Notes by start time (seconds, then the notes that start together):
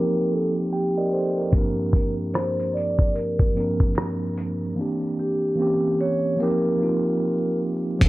Already playing: F3 A#3 C4 D#4 G4 A#4
0.32 A4
0.72 G4 G5
0.97 A#4 D5 D#5
1.13 A4 C5
1.38 G4 A#4
1.51 G2 F3 A#3 C4, kick, closed hi-hat
1.56 D4 A#4
1.93 A#4, kick, closed hi-hat
2.34 C5, cross-stick, closed hi-hat
2.60 closed hi-hat
2.74 D5, closed hi-hat
2.99 kick
3.14 A#4, closed hi-hat
3.39 kick
3.53 G2 F3 A#3 C4, closed hi-hat
3.58 D4 A#4
3.80 kick
3.95 cross-stick, closed hi-hat
4.37 closed hi-hat
4.75 E3 A#3 C4
4.79 D4 G4
5.19 G4
5.55 E3 A#3 C4
5.61 C#4 G4
6.01 C#5
6.37 F3 A#3 C4 A#4
6.42 D#4 G4
6.77 F3 A#3 C4
6.82 D#4 F4
7.99 G1 F3 A#3 C4, kick, closed hi-hat
8.04 D4